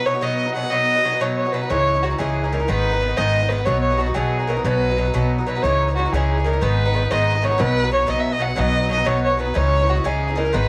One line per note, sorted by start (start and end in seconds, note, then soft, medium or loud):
0.05 0.14 B2 medium
0.05 0.14 F#3 medium
0.05 0.13 B3 medium
0.05 0.13 D#4 medium
0.05 0.24 C#5 loud
0.14 0.21 F#3 soft
0.14 0.21 B3 soft
0.14 0.22 D#4 medium
0.21 0.47 B2 medium
0.21 0.47 F#3 medium
0.21 0.46 B3 medium
0.21 0.45 D#4 medium
0.21 0.54 D#5 loud
0.46 0.54 F#3 soft
0.46 0.55 B3 soft
0.46 0.55 D#4 soft
0.54 0.63 B2 medium
0.54 0.64 F#3 medium
0.54 0.63 B3 medium
0.54 0.62 D#4 medium
0.54 0.72 F#5 loud
0.63 0.70 F#3 soft
0.63 0.71 B3 soft
0.63 0.71 D#4 soft
0.70 0.96 B2 medium
0.70 0.96 F#3 medium
0.70 0.95 B3 medium
0.70 0.94 D#4 medium
0.70 1.22 D#5 loud
0.96 1.04 F#3 soft
0.96 1.04 B3 medium
0.96 1.04 D#4 medium
1.04 1.12 B2 medium
1.04 1.13 F#3 medium
1.04 1.12 B3 medium
1.04 1.11 D#4 medium
1.12 1.20 F#3 soft
1.12 1.20 B3 soft
1.12 1.20 D#4 medium
1.20 1.45 B2 medium
1.20 1.45 F#3 medium
1.20 1.45 B3 medium
1.20 1.44 D#4 medium
1.20 1.36 C#5 medium
1.36 1.54 C#5 medium
1.45 1.53 F#3 soft
1.45 1.53 B3 soft
1.45 1.53 D#4 soft
1.53 1.62 B2 medium
1.53 1.62 F#3 medium
1.53 1.61 B3 medium
1.53 1.60 D#4 medium
1.53 1.72 B4 medium
1.61 1.70 F#3 soft
1.61 1.70 B3 soft
1.61 1.70 D#4 soft
1.70 2.15 C#2 loud
1.70 1.94 G#2 medium
1.70 1.95 E3 medium
1.70 1.94 C#4 medium
1.70 1.93 D#4 medium
1.70 2.04 C#5 loud
1.94 2.03 E3 soft
1.94 2.03 C#4 soft
1.94 2.02 D#4 medium
2.03 2.11 G#2 soft
2.03 2.11 E3 medium
2.03 2.10 C#4 medium
2.03 2.09 D#4 medium
2.03 2.21 F#4 medium
2.10 2.18 E3 soft
2.10 2.18 C#4 soft
2.10 2.19 D#4 soft
2.18 2.65 C#2 medium
2.18 2.43 G#2 medium
2.18 2.44 E3 medium
2.18 2.43 C#4 medium
2.18 2.42 D#4 medium
2.18 2.54 G#4 medium
2.44 2.51 E3 soft
2.44 2.52 C#4 soft
2.44 2.52 D#4 soft
2.52 2.60 G#2 medium
2.52 2.61 E3 medium
2.52 2.60 C#4 medium
2.52 2.58 D#4 medium
2.52 2.70 A#4 medium
2.60 2.68 E3 soft
2.60 2.69 C#4 soft
2.60 2.68 D#4 soft
2.68 3.14 G#1 loud
2.68 2.93 G#2 medium
2.68 2.93 D#3 medium
2.68 2.92 B3 medium
2.68 2.91 D#4 medium
2.68 3.19 B4 loud
2.92 3.00 D#3 soft
2.92 3.01 B3 soft
2.92 3.01 D#4 medium
3.00 3.09 G#2 medium
3.00 3.09 D#3 medium
3.00 3.08 B3 medium
3.00 3.07 D#4 medium
3.08 3.17 D#3 soft
3.08 3.17 B3 soft
3.08 3.17 D#4 soft
3.17 3.63 G#1 medium
3.17 3.42 G#2 medium
3.17 3.42 D#3 medium
3.17 3.41 B3 medium
3.17 3.40 D#4 medium
3.17 3.51 D#5 loud
3.41 3.49 D#3 soft
3.41 3.50 B3 soft
3.41 3.50 D#4 soft
3.49 3.58 G#2 medium
3.49 3.58 D#3 medium
3.49 3.58 B3 medium
3.49 3.57 D#4 medium
3.49 3.67 B4 medium
3.58 3.66 D#3 soft
3.58 3.66 B3 soft
3.58 3.67 D#4 medium
3.66 4.12 B1 loud
3.66 3.91 B2 medium
3.66 3.91 F#3 medium
3.66 3.91 B3 medium
3.66 3.89 D#4 medium
3.66 3.81 C#5 loud
3.81 4.00 C#5 medium
3.91 3.97 F#3 medium
3.91 3.98 B3 medium
3.91 3.99 D#4 medium
3.97 4.07 B2 medium
3.97 4.07 F#3 medium
3.97 4.07 B3 medium
3.97 4.05 D#4 medium
3.97 4.16 F#4 medium
4.06 4.14 F#3 soft
4.06 4.14 B3 soft
4.06 4.15 D#4 medium
4.14 4.61 B1 medium
4.14 4.40 B2 medium
4.14 4.40 F#3 medium
4.14 4.39 B3 medium
4.14 4.38 D#4 medium
4.14 4.49 G#4 medium
4.39 4.47 F#3 soft
4.39 4.48 B3 soft
4.39 4.48 D#4 soft
4.47 4.56 B2 medium
4.47 4.57 F#3 medium
4.47 4.56 B3 medium
4.47 4.55 D#4 medium
4.47 4.63 A#4 medium
4.57 4.64 F#3 soft
4.57 4.64 B3 soft
4.57 4.65 D#4 medium
4.64 5.10 B1 loud
4.64 4.89 B2 medium
4.64 4.90 F#3 medium
4.64 4.90 B3 medium
4.64 4.88 D#4 medium
4.64 5.26 B4 loud
4.89 4.97 F#3 soft
4.89 4.97 B3 soft
4.89 4.98 D#4 medium
4.97 5.05 B2 medium
4.97 5.06 F#3 medium
4.97 5.06 B3 medium
4.97 5.04 D#4 medium
5.05 5.13 F#3 soft
5.05 5.13 B3 soft
5.05 5.14 D#4 medium
5.14 5.60 B1 medium
5.14 5.38 B2 medium
5.14 5.39 F#3 medium
5.14 5.39 B3 medium
5.14 5.37 D#4 medium
5.38 5.46 F#3 soft
5.38 5.47 B3 soft
5.38 5.47 D#4 medium
5.46 5.55 B2 medium
5.46 5.55 F#3 medium
5.46 5.55 B3 medium
5.46 5.54 D#4 medium
5.46 5.64 B4 medium
5.55 5.64 F#3 soft
5.55 5.64 B3 medium
5.55 5.63 D#4 soft
5.63 6.09 C#2 loud
5.63 5.88 G#2 medium
5.63 5.89 E3 medium
5.63 5.89 C#4 medium
5.63 5.87 D#4 medium
5.63 5.95 C#5 loud
5.88 5.96 E3 soft
5.88 5.97 C#4 medium
5.88 5.96 D#4 medium
5.95 6.05 G#2 medium
5.95 6.05 E3 medium
5.95 6.05 C#4 medium
5.95 6.04 D#4 medium
5.95 6.14 F#4 medium
6.05 6.13 E3 soft
6.05 6.13 C#4 medium
6.05 6.13 D#4 medium
6.13 6.58 C#2 medium
6.13 6.38 G#2 medium
6.13 6.38 E3 medium
6.13 6.38 C#4 medium
6.13 6.36 D#4 medium
6.13 6.47 G#4 medium
6.38 6.44 E3 soft
6.38 6.45 C#4 soft
6.38 6.45 D#4 soft
6.44 6.53 G#2 medium
6.44 6.53 E3 medium
6.44 6.53 C#4 medium
6.44 6.52 D#4 medium
6.44 6.63 A#4 medium
6.53 6.62 E3 soft
6.53 6.62 C#4 soft
6.53 6.61 D#4 soft
6.61 7.07 G#1 loud
6.61 6.86 G#2 medium
6.61 6.86 D#3 medium
6.61 6.86 B3 medium
6.61 6.84 D#4 medium
6.61 7.13 B4 loud
6.85 6.93 D#3 soft
6.85 6.94 B3 medium
6.85 6.94 D#4 medium
6.94 7.02 G#2 medium
6.94 7.03 D#3 medium
6.94 7.02 B3 medium
6.94 7.01 D#4 medium
7.02 7.09 D#3 soft
7.02 7.10 B3 soft
7.02 7.10 D#4 soft
7.11 7.56 G#1 medium
7.11 7.35 G#2 medium
7.11 7.35 D#3 medium
7.11 7.36 B3 medium
7.11 7.34 D#4 medium
7.11 7.46 D#5 medium
7.35 7.42 D#3 soft
7.35 7.42 B3 soft
7.35 7.43 D#4 soft
7.42 7.51 G#2 medium
7.42 7.51 D#3 medium
7.42 7.50 B3 medium
7.42 7.49 D#4 medium
7.42 7.62 C#5 loud
7.50 7.58 D#3 soft
7.50 7.58 B3 soft
7.50 7.58 D#4 soft
7.58 8.05 B1 loud
7.58 7.83 B2 medium
7.58 7.83 F#3 medium
7.58 7.82 B3 medium
7.58 7.81 D#4 medium
7.58 7.93 B4 loud
7.82 7.90 F#3 soft
7.82 7.91 B3 medium
7.82 7.91 D#4 medium
7.90 7.99 B2 medium
7.90 7.99 F#3 medium
7.90 7.98 B3 medium
7.90 7.97 D#4 medium
7.90 8.11 C#5 loud
7.98 8.06 F#3 soft
7.98 8.07 B3 soft
7.98 8.07 D#4 medium
8.07 8.54 B1 medium
8.07 8.32 B2 medium
8.07 8.32 F#3 medium
8.07 8.31 B3 medium
8.07 8.30 D#4 loud
8.07 8.21 D#5 medium
8.20 8.34 E5 medium
8.31 8.38 F#3 soft
8.31 8.39 B3 soft
8.31 8.40 D#4 soft
8.31 8.44 D#5 loud
8.39 8.48 B2 medium
8.39 8.48 F#3 medium
8.39 8.47 B3 medium
8.39 8.46 D#4 medium
8.39 8.61 F#5 loud
8.47 8.55 F#3 soft
8.47 8.56 B3 soft
8.47 8.56 D#4 soft
8.56 9.03 B1 loud
8.56 8.81 B2 medium
8.56 8.82 F#3 medium
8.56 8.81 B3 medium
8.56 8.80 D#4 medium
8.56 8.90 D#5 loud
8.81 8.89 F#3 medium
8.81 8.89 B3 soft
8.81 8.90 D#4 medium
8.89 8.98 B2 medium
8.89 8.98 F#3 medium
8.89 8.97 B3 medium
8.89 8.96 D#4 medium
8.89 9.08 D#5 medium
8.97 9.05 F#3 soft
8.97 9.05 B3 soft
8.97 9.05 D#4 medium
9.05 9.52 B1 medium
9.05 9.30 B2 medium
9.05 9.31 F#3 medium
9.05 9.30 B3 medium
9.05 9.28 D#4 medium
9.05 9.23 C#5 loud
9.24 9.39 C#5 medium
9.30 9.37 F#3 soft
9.30 9.38 B3 soft
9.30 9.39 D#4 soft
9.37 9.47 B2 medium
9.37 9.46 F#3 medium
9.37 9.45 B3 medium
9.37 9.44 D#4 medium
9.37 9.59 B4 medium
9.45 9.54 F#3 soft
9.45 9.55 B3 soft
9.45 9.54 D#4 soft
9.54 10.01 C#2 loud
9.54 9.80 G#2 medium
9.54 9.80 E3 medium
9.54 9.79 C#4 medium
9.54 9.78 D#4 medium
9.54 9.92 C#5 loud
9.79 9.86 E3 medium
9.79 9.87 C#4 soft
9.79 9.88 D#4 medium
9.86 9.96 G#2 medium
9.86 9.96 E3 medium
9.86 9.95 C#4 medium
9.86 9.94 D#4 medium
9.90 10.08 F#4 loud
9.95 10.03 E3 soft
9.95 10.04 C#4 soft
9.95 10.04 D#4 medium
10.04 10.50 C#2 medium
10.04 10.29 G#2 medium
10.04 10.29 E3 medium
10.04 10.28 C#4 medium
10.04 10.27 D#4 medium
10.04 10.39 G#4 medium
10.28 10.35 E3 soft
10.28 10.36 C#4 soft
10.28 10.36 D#4 medium
10.35 10.45 G#2 medium
10.35 10.45 E3 medium
10.35 10.45 C#4 medium
10.35 10.44 D#4 medium
10.35 10.57 A#4 medium
10.45 10.53 E3 soft
10.45 10.54 C#4 medium
10.45 10.53 D#4 medium
10.53 10.68 G#1 loud
10.53 10.68 G#2 medium
10.53 10.68 D#3 medium
10.53 10.68 B3 medium
10.53 10.68 D#4 medium
10.53 10.68 B4 loud